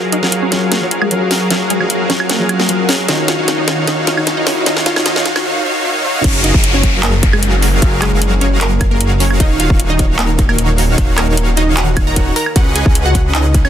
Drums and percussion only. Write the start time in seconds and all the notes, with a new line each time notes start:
0.12 closed hi-hat
0.23 snare
0.32 closed hi-hat
0.52 snare, closed hi-hat
0.72 snare, closed hi-hat
0.91 closed hi-hat
1.02 high woodblock
1.11 closed hi-hat
1.31 snare, open hi-hat
1.50 snare, closed hi-hat
1.70 closed hi-hat
1.81 high woodblock
1.90 closed hi-hat
2.10 snare, closed hi-hat
2.20 high woodblock
2.30 snare, closed hi-hat
2.49 closed hi-hat, high woodblock
2.60 snare
2.69 closed hi-hat
2.89 snare, open hi-hat
3.08 snare, closed hi-hat
3.28 snare, closed hi-hat
3.48 snare, closed hi-hat
3.68 snare, closed hi-hat
3.87 snare, closed hi-hat
4.07 snare, closed hi-hat
4.17 high woodblock
4.27 snare, closed hi-hat
4.47 snare, open hi-hat
4.66 snare, closed hi-hat
4.77 snare
4.86 snare, closed hi-hat
4.96 snare, high woodblock
5.06 snare, closed hi-hat
5.16 snare
5.26 snare, closed hi-hat
5.36 snare, high woodblock
6.24 kick, closed hi-hat, crash
6.44 closed hi-hat
6.54 kick
6.64 closed hi-hat
6.83 kick, closed hi-hat
7.03 clap, closed hi-hat
7.23 kick, closed hi-hat
7.33 high woodblock
7.43 closed hi-hat
7.62 open hi-hat
7.82 kick, closed hi-hat
8.02 clap, closed hi-hat, high woodblock
8.22 closed hi-hat
8.41 closed hi-hat
8.61 clap, closed hi-hat
8.81 kick, closed hi-hat, high woodblock
9.01 closed hi-hat
9.20 open hi-hat
9.31 high woodblock
9.40 kick, closed hi-hat
9.60 closed hi-hat
9.70 kick
9.80 closed hi-hat
9.99 kick, closed hi-hat
10.19 clap, closed hi-hat
10.39 kick, closed hi-hat
10.49 high woodblock
10.58 closed hi-hat
10.78 open hi-hat
10.98 kick, closed hi-hat
11.18 clap, closed hi-hat, high woodblock
11.37 closed hi-hat
11.57 closed hi-hat
11.77 clap, closed hi-hat
11.97 kick, closed hi-hat, high woodblock
12.16 kick, closed hi-hat
12.36 open hi-hat
12.46 high woodblock
12.56 kick, closed hi-hat
12.76 closed hi-hat
12.86 kick
12.95 closed hi-hat
13.15 kick, closed hi-hat
13.35 clap, closed hi-hat
13.54 kick, closed hi-hat
13.65 high woodblock